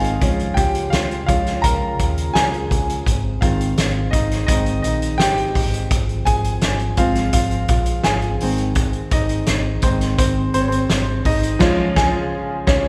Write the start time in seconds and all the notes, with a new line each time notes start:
Already playing: G#1 D#3 G#3 C4 D#4 F4 G#4 D#5 F5 G#5
0.04 closed hi-hat
0.21 C#2 C#3 F3 G#3 C#4 F4, kick, closed hi-hat
0.39 closed hi-hat
0.54 C#2 G4 G5, kick, closed hi-hat
0.75 closed hi-hat
0.90 C#2 F4 F5, snare, closed hi-hat
1.11 closed hi-hat
1.26 C#2 F3 G#3 C#4 F4 F5, kick, closed hi-hat
1.46 snare, closed hi-hat
1.62 C#2 A#4 A#5, kick, closed hi-hat
1.99 D#2, kick, closed hi-hat
2.18 closed hi-hat
2.34 C#2 G#4 G#5, snare, closed hi-hat
2.54 closed hi-hat
2.71 C#2, kick, closed hi-hat
2.90 closed hi-hat
3.06 G#1 D#3 G#3 C4, kick, closed hi-hat
3.41 G#1 D#3 G#3 C4 F4 F5, kick, closed hi-hat
3.61 closed hi-hat
3.77 G#1, snare, closed hi-hat
4.11 G#1 D#4 D#5, kick, closed hi-hat
4.31 snare, closed hi-hat
4.46 G#1 D#3 G#3 C4 D#5, kick, closed hi-hat
4.51 D#4
4.66 closed hi-hat
4.82 A#1 D#5, closed hi-hat
4.87 D#4
5.02 closed hi-hat
5.18 G#1 G4 G5, snare, closed hi-hat
5.38 closed hi-hat
5.55 G#1, kick, open hi-hat
5.74 closed hi-hat
5.91 G#1 F3, kick, closed hi-hat
6.09 closed hi-hat
6.25 G#1 G#4 G#5, kick, closed hi-hat
6.44 closed hi-hat
6.61 G#1, snare, closed hi-hat
6.79 closed hi-hat
6.97 G#1 F3 G#3 C4 F4 F5, kick, closed hi-hat
7.15 snare, closed hi-hat
7.33 G#1 F4 F5, kick, closed hi-hat
7.51 closed hi-hat
7.68 A#1 F4 F5, kick, closed hi-hat
7.86 closed hi-hat
8.04 G#1 G#4 G#5, snare, closed hi-hat
8.22 closed hi-hat
8.40 G#1 D#3 G#3 C4, open hi-hat
8.58 closed hi-hat
8.75 kick, closed hi-hat
8.93 closed hi-hat
9.11 G#1 D#4 D#5, kick, closed hi-hat
9.29 closed hi-hat
9.46 G#1, snare, closed hi-hat
9.82 G#1 D#3 G#3 C4 C5, kick, closed hi-hat
10.01 snare, closed hi-hat
10.18 G#1 C4 C5, kick, closed hi-hat
10.54 G#1 C4 C5, closed hi-hat
10.60 C#5
10.68 C4 C5, closed hi-hat
10.90 G#1, snare, closed hi-hat
11.25 G#1 D#4 D#5, kick, open hi-hat
11.43 closed hi-hat
11.59 C#2 C#3 F3 G#3 C#4 F4 G#4 F5, kick, snare, crash
11.96 C#2 G#4 G#5, kick, snare
12.67 C#2 C#4 C#5, kick, snare